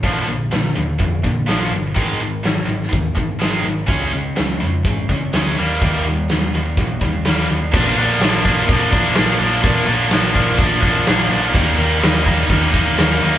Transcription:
<<
  \new Staff \with { instrumentName = "Distorted electric guitar" } { \clef bass \time 4/4 \key bes \mixolydian \tempo 4 = 125 <bes, d f>8 <bes, d>8 <bes, d>8 <bes, d>8 <bes, d>8 <bes, d>8 <bes, d f>8 <bes, d>8 | <aes, ees aes>8 <aes, ees>8 <aes, ees>8 <aes, ees>8 <aes, ees>8 <aes, ees>8 <aes, ees aes>8 <aes, ees>8 | <des aes des'>8 <des aes>8 <des aes>8 <des aes>8 <des aes>8 <des aes>8 <des aes des'>8 <ees g bes>8 | <ees g bes>8 <ees g>8 <ees g>8 <ees g>8 <ees g>8 <ees g>8 <ees g bes>8 <ees g>8 |
<bes, d f bes d'>8 <f bes d'>8 <d f bes d'>8 <bes, d f bes d'>8 <d f bes d'>8 <f bes d'>8 <bes, d f bes d'>8 <f bes d'>8 | <bes, d f bes d'>8 <f bes d'>8 <d f bes d'>8 <bes, d f bes d'>8 <d f bes d'>8 <f bes d'>8 <bes, d f bes d'>8 <f bes d'>8 | <ees g bes ees'>8 <g bes ees'>8 <ees g bes ees'>8 <ees g bes ees'>8 <ees g bes ees'>8 <g bes ees'>8 <ees g bes ees'>8 <g bes ees'>8 | }
  \new Staff \with { instrumentName = "Picked electric bass" } { \clef bass \time 4/4 \key bes \mixolydian bes,,8 bes,,8 bes,,8 ees,8 f,8 bes,8 bes,,8 g,,8 | aes,,8 aes,,8 aes,,8 aes,,8 ees,8 aes,,8 aes,,8 aes,,8 | des,8 des,8 des,8 f,8 aes,8 des8 d,8 ees,8 | ees,8 ees,8 ees,8 ees,8 bes,,8 ees,8 ees,8 ees,8 |
bes,,8 bes,,8 bes,,4 bes,,4 bes,,8 bes,,8 | bes,,8 bes,,8 bes,,8 bes,,8 bes,,8 bes,,8 bes,,8 bes,,8 | ees,8 ees,8 ees,4 ees,4 ees,8 ees,8 | }
  \new DrumStaff \with { instrumentName = "Drums" } \drummode { \time 4/4 <hh bd>8 hh8 <hh sn>8 hh8 <hh bd>8 <hh bd>8 <hh sn>8 hh8 | <hh bd>8 hh8 <hh sn>8 hh16 sn16 <hh bd>8 <hh bd>8 <hh sn>8 hh8 | <hh bd>8 hh8 <hh sn>8 hh8 <hh bd>8 <hh bd>8 <hh sn>8 hh8 | <hh bd>8 hh8 <hh sn>8 hh8 <hh bd>8 <hh bd>8 <hh sn>8 hh8 |
<cymc bd>8 cymc8 <cymc sn>8 <cymc bd>8 <cymc bd>8 <cymc bd>8 <cymc sn>8 cymc8 | <cymc bd>8 cymc8 <cymc sn>8 <cymc bd>16 sn16 <cymc bd>8 <cymc bd>8 <cymc sn>8 cymc8 | <cymc bd>8 cymc8 <cymc sn>8 <cymc bd>8 <cymc bd>8 <cymc bd>8 <cymc sn>8 cymc16 sn16 | }
>>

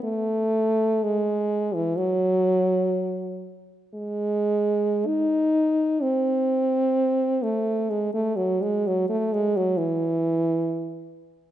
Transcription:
\new Staff \with { instrumentName = "French horn" } { \clef bass \time 4/4 \key gis \phrygian \tempo 4 = 64 a4 gis8. e16 fis4. r8 | gis4 dis'4 bis4. a8 | gis16 a16 fis16 gis16 fis16 a16 gis16 fis16 e4. r8 | }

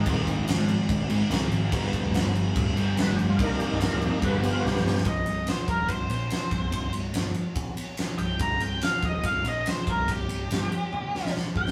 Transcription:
<<
  \new Staff \with { instrumentName = "Lead electric guitar" } { \time 4/4 \key c \minor \tempo 4 = 143 r1 | r1 | r1 | ees''4 c''8 bes'8 c''8 c''4.~ |
c''8 r2. g''8 | bes''8 g''8 f''8 ees''8 f''8 ees''8 c''8 bes'8 | g'2. r8 g''8 | }
  \new Staff \with { instrumentName = "Tonewheel organ" } { \time 4/4 \key c \minor ees'4 r2. | r2. \tuplet 3/2 { b'8 g'8 f'8 } | \tuplet 3/2 { bes'8 g'8 ees'8 bes'8 g'8 ees'8 b'8 g'8 f'8 } <fis' g'>4 | r1 |
r1 | r1 | r1 | }
  \new Staff \with { instrumentName = "Tonewheel organ" } { \time 4/4 \key c \minor <bes c'>8 r2. r8 | <f b>4. r2 r8 | <ees bes d'>2 <f b>2 | r1 |
r1 | r1 | r1 | }
  \new Staff \with { instrumentName = "Distorted electric guitar" } { \clef bass \time 4/4 \key c \minor <aes, ees aes>2~ <aes, ees aes>8 <aes, ees aes>8 <aes, ees aes>4 | <g, d g>2~ <g, d g>8 <g, d g>8 <g, d g>4 | <c, g, c>2 <g, d g>2 | r1 |
r1 | r1 | r1 | }
  \new Staff \with { instrumentName = "Picked electric bass" } { \clef bass \time 4/4 \key c \minor ees,,8 r16 aes,,8 aes,8 r16 aes,,4 c,8 aes,,8 | g,,8 r16 d,,8 g,,8. d,,8 g,,8. f,,8 g,16 | c,,8 r16 c,,8 d,,8 r16 g,,4 b,,8 g,8 | c,,8 c,,8 r8 ees,,8 c,,8 bes,,8 r8 c,,8 |
c,,8 c,,8 g,,8 r2 c,,8 | c,,8 c,,8 r8 ees,,8 c,,8 bes,,8 r8 c,,8 | c,,8 c,,8 g,,8 r2 c,,8 | }
  \new DrumStaff \with { instrumentName = "Drums" } \drummode { \time 4/4 <cymc bd>8 <cymc bd>8 <cymc sn>8 cymc8 <cymc bd>8 cymc8 <cymc sn>8 cymc8 | <cymc bd>8 <cymc bd>8 <cymc sn>8 cymc8 <cymc bd>8 cymc8 <cymc sn>8 cymc8 | <cymc bd>8 cymc8 <cymc sn>8 cymc8 <cymc bd>8 cymc8 sn16 sn16 sn16 sn16 | <bd cymr>8 cymr8 <cymr sn>8 <bd cymr>8 <bd cymr>8 cymr8 <cymr sn>8 <bd cymr>8 |
<bd cymr>8 cymr8 <cymr sn>8 cymr8 <bd cymr>8 cymr8 <cymr sn>8 cymr8 | <bd cymr>8 cymr8 <cymr sn>8 <bd cymr>8 <bd cymr>8 cymr8 <cymr sn>8 <bd cymr>8 | <bd cymr>8 cymr8 <cymr sn>8 cymr8 tommh8 sn16 sn16 sn8 bd16 sn16 | }
>>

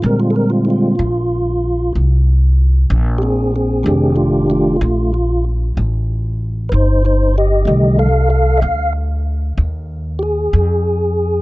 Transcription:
<<
  \new Staff \with { instrumentName = "Tonewheel organ" } { \time 12/8 \key f \mixolydian \tempo 4. = 63 bes'16 f'16 <a' bes'>16 f'16 <e' f'>2 r2 <c' g' aes'>8 <c' aes'>8 | <c' aes'>8 <a f'>8 <a f'>8 <a f'>8 f'8 r2 <ees' b' c''>8 <ees' c''>8 <g' ees''>8 | <g' ees''>8 <a' f''>8 <a' f''>8 <e'' f''>8 r2 <g' aes'>2 | }
  \new Staff \with { instrumentName = "Tonewheel organ" } { \clef bass \time 12/8 \key f \mixolydian <d g aes c'>4. r1 r8 | <ees a d' g'>4. r1 r8 | <d ees g a>8 r1 r4. | }
  \new Staff \with { instrumentName = "Upright bass" } { \clef bass \time 12/8 \key f \mixolydian bes,4. bes,,4. c,4. bes,,4. | f,,4. bes,,4. a,,4. g,,4. | c,4. d,4. ees,4. f,4. | }
>>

